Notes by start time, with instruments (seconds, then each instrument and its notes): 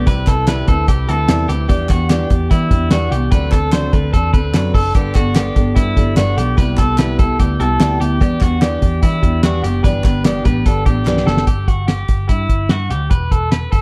0.06 picked electric bass C2, steel-string acoustic guitar C3 G3 C4 E4 B4, clean electric guitar B4, kick, closed hi-hat
0.27 picked electric bass C2, steel-string acoustic guitar C4 E4 B4, clean electric guitar A4, kick, clap, closed hi-hat
0.47 steel-string acoustic guitar C3 G3 C4 E4 B4, clean electric guitar B4, snare, clap, closed hi-hat
0.67 picked electric bass D2, steel-string acoustic guitar C4 E4 B4, clean electric guitar A4, kick, closed hi-hat
0.87 picked electric bass C2, steel-string acoustic guitar G3 C4 E4 B4, clean electric guitar G4, kick, closed hi-hat
1.07 picked electric bass D2, steel-string acoustic guitar C4 E4 B4, clean electric guitar A4, closed hi-hat
1.28 picked electric bass E2, steel-string acoustic guitar C3 G3 C4 E4 B4, snare, clap, closed hi-hat
1.48 picked electric bass D2, steel-string acoustic guitar C4 E4 B4, clean electric guitar G4, closed hi-hat
1.68 picked electric bass E2, steel-string acoustic guitar E3 G3 B3 D4 G4, clean electric guitar G4, kick, closed hi-hat
1.89 picked electric bass E2, steel-string acoustic guitar B3 D4 G4, clean electric guitar F#4, kick, clap, closed hi-hat
2.09 steel-string acoustic guitar E3 G3 B3 D4 G4, clean electric guitar G4, snare, clap, closed hi-hat
2.30 picked electric bass E2, steel-string acoustic guitar B3 D4 G4, kick, closed hi-hat
2.51 picked electric bass E3, steel-string acoustic guitar G3 B3 D4 G4, clean electric guitar E4, kick, closed hi-hat
2.71 picked electric bass E2, steel-string acoustic guitar B3 D4 G4, kick, closed hi-hat
2.91 picked electric bass E2, steel-string acoustic guitar E3 G3 B3 D4 G4, clean electric guitar F#4, snare, clap, closed hi-hat
3.11 picked electric bass C2, steel-string acoustic guitar B3 D4 G4, clean electric guitar G4, closed hi-hat
3.32 picked electric bass D2, steel-string acoustic guitar D3 F#3 C4 D4 A4, clean electric guitar B4, kick, closed hi-hat
3.52 steel-string acoustic guitar C4 D4 A4, clean electric guitar A4, kick, clap, closed hi-hat
3.72 steel-string acoustic guitar D3 F#3 C4 D4 A4, clean electric guitar C5, snare, clap, closed hi-hat
3.93 picked electric bass D2, steel-string acoustic guitar C4 D4 A4, clean electric guitar B4, kick, closed hi-hat
4.13 picked electric bass E2, steel-string acoustic guitar F#3 C4 D4 A4, clean electric guitar A4, kick, closed hi-hat
4.33 picked electric bass D2, steel-string acoustic guitar C4 D4 A4, clean electric guitar B4, kick, closed hi-hat
4.53 picked electric bass F#2, steel-string acoustic guitar D3 F#3 C4 D4 A4, snare, clap, closed hi-hat
4.74 picked electric bass F#1, steel-string acoustic guitar C4 D4 A4, clean electric guitar A4, kick, open hi-hat
4.95 picked electric bass G1, steel-string acoustic guitar G2 D3 G3 B3 D4 A4, clean electric guitar G4, kick, closed hi-hat
5.15 picked electric bass G1, steel-string acoustic guitar G3 B3 D4 A4, clean electric guitar F#4, kick, clap, closed hi-hat
5.35 steel-string acoustic guitar G2 D3 G3 B3 D4 A4, clean electric guitar G4, snare, clap, closed hi-hat
5.56 picked electric bass G1, steel-string acoustic guitar G3 B3 D4 A4, kick, closed hi-hat
5.76 picked electric bass G2, steel-string acoustic guitar G3 B3 D4 A4, clean electric guitar E4, kick, closed hi-hat
5.96 picked electric bass G1, steel-string acoustic guitar G3 B3 D4 A4, kick, closed hi-hat
6.16 picked electric bass G1, steel-string acoustic guitar G2 D3 G3 B3 D4 A4, clean electric guitar F#4, snare, clap, closed hi-hat
6.37 picked electric bass B1, steel-string acoustic guitar G3 B3 D4 A4, clean electric guitar G4, closed hi-hat
6.57 picked electric bass C2, steel-string acoustic guitar C3 G3 B3 E4 G4, clean electric guitar B4, kick, closed hi-hat
6.77 picked electric bass C2, steel-string acoustic guitar B3 E4 G4, clean electric guitar A4, kick, clap, closed hi-hat
6.98 steel-string acoustic guitar C3 G3 B3 E4 G4, clean electric guitar B4, snare, clap, closed hi-hat
7.19 steel-string acoustic guitar B3 E4 G4, clean electric guitar A4, kick, closed hi-hat
7.39 picked electric bass D2, steel-string acoustic guitar G3 B3 E4 G4, clean electric guitar G4, kick, closed hi-hat
7.59 picked electric bass C2, steel-string acoustic guitar B3 E4 G4, clean electric guitar A4, closed hi-hat
7.80 picked electric bass D2, steel-string acoustic guitar C3 G3 B3 E4 G4, snare, clap, closed hi-hat
8.00 picked electric bass D2, steel-string acoustic guitar B3 E4 G4, clean electric guitar G4, closed hi-hat
8.20 picked electric bass E2, steel-string acoustic guitar E3 G3 B3 D4 G4, clean electric guitar G4, kick, closed hi-hat
8.41 picked electric bass E2, steel-string acoustic guitar B3 D4 G4, clean electric guitar F#4, kick, clap, closed hi-hat
8.61 steel-string acoustic guitar E3 G3 B3 D4 G4, clean electric guitar G4, snare, clap, closed hi-hat
8.82 picked electric bass E2, steel-string acoustic guitar B3 D4 G4, kick, closed hi-hat
9.02 picked electric bass E3, steel-string acoustic guitar G3 B3 D4 G4, clean electric guitar E4, kick, closed hi-hat
9.22 picked electric bass E2, steel-string acoustic guitar B3 D4 G4, kick, closed hi-hat
9.43 picked electric bass E2, steel-string acoustic guitar E3 G3 B3 D4 G4, clean electric guitar F#4, snare, clap, closed hi-hat
9.64 picked electric bass F#1, steel-string acoustic guitar B3 D4 G4, clean electric guitar G4, closed hi-hat
9.84 picked electric bass G1, steel-string acoustic guitar G2 E3 G3 B3 D4 G4, clean electric guitar B4, kick, closed hi-hat
10.04 picked electric bass G1, steel-string acoustic guitar G3 B3 D4 G4, clean electric guitar B4, kick, clap, closed hi-hat
10.24 steel-string acoustic guitar G2 E3 G3 B3 D4 G4, clean electric guitar G4, snare, clap, closed hi-hat
10.45 picked electric bass A1, steel-string acoustic guitar G3 B3 D4 G4, clean electric guitar B4, kick, closed hi-hat
10.66 picked electric bass G1, steel-string acoustic guitar G3 B3 D4 G4, clean electric guitar A4, kick, closed hi-hat
10.86 picked electric bass A1, steel-string acoustic guitar G3 B3 D4 G4, clean electric guitar G4, kick, closed hi-hat
11.06 picked electric bass B1, steel-string acoustic guitar G2 E3 G3 B3 D4 G4, snare, clap
11.17 snare
11.27 picked electric bass F#1, steel-string acoustic guitar G3 B3 D4 G4, clean electric guitar A4, snare
11.37 snare
11.47 picked electric bass G1, clean electric guitar G4, kick, closed hi-hat
11.68 picked electric bass G1, clean electric guitar F#4, kick, closed hi-hat
11.88 clean electric guitar G4, snare, closed hi-hat
12.08 picked electric bass G1, kick, closed hi-hat
12.29 picked electric bass G2, clean electric guitar E4, kick, closed hi-hat
12.49 picked electric bass G1, kick, closed hi-hat
12.69 picked electric bass G2, clean electric guitar F#4, snare, closed hi-hat
12.90 picked electric bass D2, clean electric guitar G4, closed hi-hat
13.11 picked electric bass E1, clean electric guitar B4, kick, closed hi-hat
13.31 picked electric bass E1, clean electric guitar A4, kick, closed hi-hat
13.52 clean electric guitar B4, snare, closed hi-hat
13.72 picked electric bass F#1, clean electric guitar A4, kick, closed hi-hat